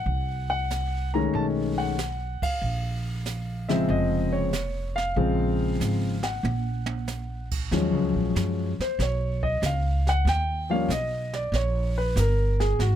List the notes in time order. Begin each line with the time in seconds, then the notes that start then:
Already playing: F#5
0.06 C2, brush sweep
0.50 F#5
0.70 snare, hi-hat pedal
1.14 D#3 G#3 A3 C#4 A#5
1.34 B1 A5, brush sweep
1.78 F#5
1.98 snare, hi-hat pedal
2.42 F5, muted upright bass stroke, kick, ride
2.62 A#1, brush sweep
3.26 snare, hi-hat pedal
3.69 C#3 F3 G#3 C4 E5, snare
3.89 F1 D#5, brush sweep
4.32 C#5
4.53 snare, hi-hat pedal
4.96 F5, snare
5.16 A#1 C#3 F3 G#3 C4, brush sweep
5.80 G#1, snare, hi-hat pedal
6.23 F#5, snare
6.43 A#1, high tom
6.86 high tom
7.08 snare, hi-hat pedal
7.51 kick, crash
7.71 D#2 F3 F#3 G#3 C#4, brush sweep, snare
7.93 C#2
8.14 A#1
8.35 F#2, snare, hi-hat pedal
8.79 C5, muted upright bass stroke, snare
8.99 B1 C#5, brush sweep, snare
9.43 D#5, kick
9.62 C#2 F5, snare, hi-hat pedal
10.07 F#5, snare
10.25 D#2 G5, brush sweep, snare
10.70 F3 G3 A#3 C#4 F5
10.88 B1 D#5, snare, hi-hat pedal
11.33 D5, snare
11.52 A#1 C#5, brush sweep, snare
11.98 B4
12.16 G1 A#4, snare, hi-hat pedal
12.60 G#4, snare
12.79 G#1 F#4, brush sweep, snare